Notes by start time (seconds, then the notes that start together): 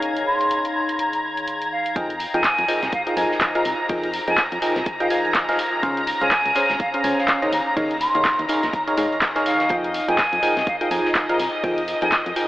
Already playing: D#3 D#4 G#4 C#5 F5 A#5 G#6
0.02 closed hi-hat
0.17 closed hi-hat
0.26 C6
0.41 closed hi-hat
0.51 closed hi-hat
0.65 closed hi-hat
0.89 closed hi-hat
0.99 A#5, closed hi-hat
1.13 A#5, closed hi-hat
1.37 closed hi-hat
1.48 closed hi-hat
1.62 closed hi-hat
1.72 F5
1.86 closed hi-hat
1.96 F2 F3 D#4 G#4 A#4 G5 A#5 A#6, kick, closed hi-hat
2.10 closed hi-hat
2.20 closed hi-hat, open hi-hat
2.34 F2 F3 D#4 G#4 A#4 G5 G#5, closed hi-hat
2.44 kick, snare, clap, closed hi-hat
2.58 F2, closed hi-hat
2.68 F3 D#4 G#4 A#4 G5, closed hi-hat, open hi-hat
2.82 C2, snare, closed hi-hat
2.92 F5, kick, closed hi-hat
3.07 F3 D#4 G#4 A#4 F5 G5, closed hi-hat
3.17 F2 F3 D#4 G#4 A#4 G#5, closed hi-hat, open hi-hat
3.31 snare
3.40 kick, snare, clap, closed hi-hat
3.55 F3 D#4 G#4 A#4 F5 A#5, closed hi-hat
3.65 C2 A#5, closed hi-hat, open hi-hat
3.89 F2 F3 D#4 G#4 A#4 G5, kick, closed hi-hat, open hi-hat
4.03 closed hi-hat
4.14 closed hi-hat, open hi-hat
4.27 F2 F3 D#4 G#4 A#4 G5 G#5, closed hi-hat
4.38 kick, snare, clap, closed hi-hat
4.52 F2, closed hi-hat
4.62 F3 D#4 G#4 A#4 G5, closed hi-hat, open hi-hat
4.76 C2, snare, closed hi-hat
4.86 kick, closed hi-hat
5.00 F3 D#4 G#4 A#4 F5 G5, closed hi-hat
5.10 F3 D#4 G#4 A#4 F5 G#5, closed hi-hat, open hi-hat
5.25 closed hi-hat
5.34 kick, snare, clap, closed hi-hat
5.49 F3 D#4 G#4 A#4 F5, snare, closed hi-hat
5.59 closed hi-hat, open hi-hat
5.83 C#2 C#3 C#4 G#4 C5 F5, kick, closed hi-hat
5.97 closed hi-hat
6.07 closed hi-hat, open hi-hat
6.21 C#2 C#3 C#4 G#4 C5 F5 G#5, closed hi-hat
6.31 kick, snare, clap, closed hi-hat
6.46 C#2, closed hi-hat
6.55 C#3 C#4 G#4 C5 F5, closed hi-hat, open hi-hat
6.69 G#1, snare, closed hi-hat
6.80 F5, kick, closed hi-hat
6.94 C#3 C#4 G#4 C5 F5, closed hi-hat
7.04 C#2 C#3 C#4 G#4 C5 G#5, closed hi-hat, open hi-hat
7.18 F5, snare
7.28 kick, snare, clap, closed hi-hat
7.42 D#3 C#4 G#4 C5 D#5, closed hi-hat
7.52 D#2 A#5, closed hi-hat, open hi-hat
7.66 A#5
7.77 D#2 D#3 D#4 G#4 C#5 F5, kick, closed hi-hat, open hi-hat
7.91 closed hi-hat
8.01 C6, closed hi-hat, open hi-hat
8.15 D#2 D#3 D#4 G#4 C#5 F5, closed hi-hat
8.25 kick, snare, clap, closed hi-hat
8.39 D#2, closed hi-hat
8.49 D#3 D#4 G#4 C#5 F5, closed hi-hat, open hi-hat
8.63 A#1, snare, closed hi-hat
8.73 A#5, kick, closed hi-hat
8.87 D#3 D#4 G#4 C#5 F5 A#5, closed hi-hat
8.97 G#2 D#3 D#4 G#4 C#5 F5, closed hi-hat, open hi-hat
9.12 closed hi-hat
9.21 kick, snare, clap, closed hi-hat
9.35 D#3 D#4 G#4 C#5 F5, snare, closed hi-hat
9.46 F5, snare, closed hi-hat, open hi-hat
9.60 snare, closed hi-hat
9.69 F2 F3 D#4 G#4 A#4 D#5 G5 D#6, kick, closed hi-hat
9.84 closed hi-hat
9.94 closed hi-hat, open hi-hat
10.08 F2 F3 D#4 G#4 A#4 G5 G#5, closed hi-hat
10.18 kick, snare, clap, closed hi-hat
10.33 F2, closed hi-hat
10.43 F3 D#4 G#4 A#4 G5, closed hi-hat, open hi-hat
10.57 C2, snare, closed hi-hat
10.67 F5, kick, closed hi-hat
10.81 F3 D#4 G#4 A#4 F5 G5, closed hi-hat
10.91 F2 F3 D#4 G#4 A#4 G#5, closed hi-hat, open hi-hat
11.05 snare
11.15 kick, snare, clap, closed hi-hat
11.29 F3 D#4 G#4 A#4 F5 A#5, closed hi-hat
11.39 C2 A#5, closed hi-hat, open hi-hat
11.64 F2 F3 D#4 G#4 A#4 G5, kick, closed hi-hat, open hi-hat
11.78 closed hi-hat
11.88 closed hi-hat, open hi-hat
12.01 F2 F3 D#4 G#4 A#4 G5 G#5, closed hi-hat
12.12 kick, snare, clap, closed hi-hat
12.26 F2, closed hi-hat
12.36 F3 D#4 G#4 A#4 G5, closed hi-hat, open hi-hat